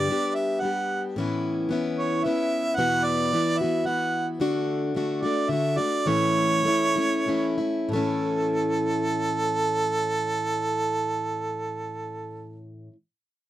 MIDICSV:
0, 0, Header, 1, 3, 480
1, 0, Start_track
1, 0, Key_signature, 3, "major"
1, 0, Tempo, 540541
1, 1035, Time_signature, 3, 2, 24, 8
1, 4394, Tempo, 567644
1, 5834, Tempo, 628272
1, 6794, Tempo, 662983
1, 10842, End_track
2, 0, Start_track
2, 0, Title_t, "Harmonica"
2, 0, Program_c, 0, 22
2, 0, Note_on_c, 0, 74, 94
2, 305, Note_on_c, 0, 76, 75
2, 318, Note_off_c, 0, 74, 0
2, 538, Note_on_c, 0, 78, 74
2, 551, Note_off_c, 0, 76, 0
2, 907, Note_off_c, 0, 78, 0
2, 1755, Note_on_c, 0, 73, 68
2, 1991, Note_on_c, 0, 76, 87
2, 2004, Note_off_c, 0, 73, 0
2, 2450, Note_on_c, 0, 78, 104
2, 2463, Note_off_c, 0, 76, 0
2, 2700, Note_on_c, 0, 74, 89
2, 2713, Note_off_c, 0, 78, 0
2, 3180, Note_on_c, 0, 76, 73
2, 3193, Note_off_c, 0, 74, 0
2, 3428, Note_on_c, 0, 78, 74
2, 3441, Note_off_c, 0, 76, 0
2, 3790, Note_off_c, 0, 78, 0
2, 4617, Note_on_c, 0, 74, 76
2, 4858, Note_on_c, 0, 76, 90
2, 4871, Note_off_c, 0, 74, 0
2, 5098, Note_on_c, 0, 74, 85
2, 5110, Note_off_c, 0, 76, 0
2, 5355, Note_on_c, 0, 73, 98
2, 5368, Note_off_c, 0, 74, 0
2, 6551, Note_off_c, 0, 73, 0
2, 6789, Note_on_c, 0, 69, 83
2, 10222, Note_off_c, 0, 69, 0
2, 10842, End_track
3, 0, Start_track
3, 0, Title_t, "Steel-string acoustic guitar"
3, 0, Program_c, 1, 25
3, 78, Note_on_c, 1, 55, 57
3, 92, Note_on_c, 1, 59, 50
3, 95, Note_on_c, 1, 62, 57
3, 106, Note_on_c, 1, 67, 53
3, 538, Note_off_c, 1, 55, 0
3, 548, Note_on_c, 1, 55, 54
3, 549, Note_off_c, 1, 59, 0
3, 549, Note_off_c, 1, 62, 0
3, 552, Note_on_c, 1, 59, 51
3, 560, Note_on_c, 1, 62, 49
3, 565, Note_off_c, 1, 67, 0
3, 576, Note_on_c, 1, 67, 51
3, 1031, Note_on_c, 1, 45, 70
3, 1032, Note_off_c, 1, 55, 0
3, 1037, Note_off_c, 1, 62, 0
3, 1045, Note_off_c, 1, 67, 0
3, 1046, Note_on_c, 1, 52, 73
3, 1047, Note_off_c, 1, 59, 0
3, 1048, Note_on_c, 1, 61, 76
3, 1050, Note_on_c, 1, 59, 67
3, 1064, Note_on_c, 1, 64, 79
3, 1495, Note_off_c, 1, 52, 0
3, 1499, Note_on_c, 1, 52, 61
3, 1512, Note_off_c, 1, 59, 0
3, 1513, Note_off_c, 1, 45, 0
3, 1515, Note_on_c, 1, 59, 64
3, 1517, Note_off_c, 1, 61, 0
3, 1527, Note_off_c, 1, 64, 0
3, 1527, Note_on_c, 1, 61, 62
3, 1531, Note_on_c, 1, 64, 64
3, 1984, Note_off_c, 1, 52, 0
3, 1994, Note_on_c, 1, 52, 54
3, 1995, Note_off_c, 1, 59, 0
3, 2001, Note_off_c, 1, 61, 0
3, 2002, Note_off_c, 1, 64, 0
3, 2005, Note_on_c, 1, 59, 53
3, 2011, Note_on_c, 1, 61, 52
3, 2018, Note_on_c, 1, 64, 51
3, 2462, Note_on_c, 1, 40, 66
3, 2463, Note_off_c, 1, 59, 0
3, 2464, Note_off_c, 1, 52, 0
3, 2464, Note_on_c, 1, 47, 74
3, 2470, Note_off_c, 1, 64, 0
3, 2473, Note_on_c, 1, 59, 72
3, 2475, Note_on_c, 1, 52, 65
3, 2477, Note_off_c, 1, 61, 0
3, 2479, Note_on_c, 1, 66, 69
3, 2480, Note_on_c, 1, 64, 69
3, 2945, Note_off_c, 1, 52, 0
3, 2947, Note_off_c, 1, 40, 0
3, 2948, Note_off_c, 1, 47, 0
3, 2953, Note_off_c, 1, 59, 0
3, 2956, Note_on_c, 1, 52, 51
3, 2957, Note_off_c, 1, 64, 0
3, 2966, Note_on_c, 1, 59, 47
3, 2974, Note_on_c, 1, 64, 54
3, 2981, Note_off_c, 1, 66, 0
3, 2984, Note_on_c, 1, 66, 64
3, 3194, Note_off_c, 1, 52, 0
3, 3195, Note_off_c, 1, 66, 0
3, 3199, Note_off_c, 1, 59, 0
3, 3203, Note_off_c, 1, 64, 0
3, 3206, Note_on_c, 1, 66, 43
3, 3212, Note_on_c, 1, 64, 37
3, 3226, Note_on_c, 1, 59, 37
3, 3234, Note_on_c, 1, 52, 37
3, 3407, Note_off_c, 1, 52, 0
3, 3418, Note_on_c, 1, 52, 53
3, 3425, Note_off_c, 1, 59, 0
3, 3427, Note_off_c, 1, 64, 0
3, 3436, Note_on_c, 1, 59, 51
3, 3438, Note_on_c, 1, 64, 60
3, 3439, Note_off_c, 1, 66, 0
3, 3449, Note_on_c, 1, 66, 60
3, 3901, Note_off_c, 1, 52, 0
3, 3905, Note_on_c, 1, 50, 62
3, 3906, Note_off_c, 1, 66, 0
3, 3910, Note_off_c, 1, 59, 0
3, 3913, Note_on_c, 1, 57, 79
3, 3914, Note_off_c, 1, 64, 0
3, 3916, Note_on_c, 1, 66, 91
3, 3918, Note_on_c, 1, 62, 84
3, 4381, Note_off_c, 1, 50, 0
3, 4392, Note_on_c, 1, 50, 54
3, 4396, Note_off_c, 1, 62, 0
3, 4396, Note_off_c, 1, 66, 0
3, 4403, Note_off_c, 1, 57, 0
3, 4406, Note_on_c, 1, 57, 61
3, 4412, Note_on_c, 1, 62, 59
3, 4412, Note_on_c, 1, 66, 64
3, 4619, Note_off_c, 1, 66, 0
3, 4624, Note_off_c, 1, 50, 0
3, 4629, Note_on_c, 1, 66, 45
3, 4632, Note_off_c, 1, 57, 0
3, 4632, Note_off_c, 1, 62, 0
3, 4642, Note_on_c, 1, 62, 40
3, 4655, Note_on_c, 1, 57, 34
3, 4853, Note_on_c, 1, 50, 57
3, 4858, Note_off_c, 1, 57, 0
3, 4862, Note_off_c, 1, 66, 0
3, 4865, Note_off_c, 1, 62, 0
3, 4868, Note_on_c, 1, 57, 58
3, 4876, Note_on_c, 1, 62, 61
3, 4884, Note_on_c, 1, 66, 61
3, 5075, Note_off_c, 1, 66, 0
3, 5085, Note_on_c, 1, 66, 42
3, 5087, Note_off_c, 1, 62, 0
3, 5094, Note_off_c, 1, 50, 0
3, 5097, Note_on_c, 1, 62, 36
3, 5101, Note_off_c, 1, 57, 0
3, 5116, Note_on_c, 1, 57, 32
3, 5332, Note_off_c, 1, 66, 0
3, 5334, Note_on_c, 1, 45, 70
3, 5335, Note_off_c, 1, 57, 0
3, 5338, Note_off_c, 1, 62, 0
3, 5340, Note_on_c, 1, 52, 71
3, 5345, Note_on_c, 1, 57, 70
3, 5348, Note_on_c, 1, 61, 80
3, 5355, Note_on_c, 1, 64, 66
3, 5810, Note_off_c, 1, 52, 0
3, 5820, Note_on_c, 1, 52, 46
3, 5826, Note_off_c, 1, 57, 0
3, 5829, Note_off_c, 1, 61, 0
3, 5831, Note_off_c, 1, 45, 0
3, 5836, Note_on_c, 1, 57, 54
3, 5839, Note_on_c, 1, 61, 56
3, 5841, Note_off_c, 1, 64, 0
3, 5856, Note_on_c, 1, 64, 56
3, 6058, Note_off_c, 1, 52, 0
3, 6060, Note_off_c, 1, 64, 0
3, 6066, Note_off_c, 1, 57, 0
3, 6067, Note_off_c, 1, 61, 0
3, 6070, Note_on_c, 1, 64, 45
3, 6081, Note_on_c, 1, 61, 40
3, 6086, Note_on_c, 1, 57, 38
3, 6298, Note_on_c, 1, 52, 57
3, 6301, Note_off_c, 1, 57, 0
3, 6304, Note_off_c, 1, 64, 0
3, 6307, Note_off_c, 1, 61, 0
3, 6310, Note_on_c, 1, 57, 59
3, 6316, Note_on_c, 1, 61, 57
3, 6325, Note_on_c, 1, 64, 62
3, 6532, Note_off_c, 1, 64, 0
3, 6541, Note_on_c, 1, 64, 42
3, 6542, Note_off_c, 1, 52, 0
3, 6548, Note_off_c, 1, 57, 0
3, 6548, Note_off_c, 1, 61, 0
3, 6557, Note_on_c, 1, 61, 43
3, 6563, Note_on_c, 1, 57, 33
3, 6777, Note_on_c, 1, 45, 70
3, 6792, Note_off_c, 1, 64, 0
3, 6800, Note_off_c, 1, 61, 0
3, 6801, Note_on_c, 1, 52, 57
3, 6802, Note_off_c, 1, 57, 0
3, 6813, Note_on_c, 1, 57, 71
3, 6829, Note_on_c, 1, 61, 73
3, 6840, Note_on_c, 1, 64, 79
3, 10393, Note_off_c, 1, 45, 0
3, 10415, Note_off_c, 1, 52, 0
3, 10427, Note_off_c, 1, 57, 0
3, 10443, Note_off_c, 1, 61, 0
3, 10455, Note_off_c, 1, 64, 0
3, 10842, End_track
0, 0, End_of_file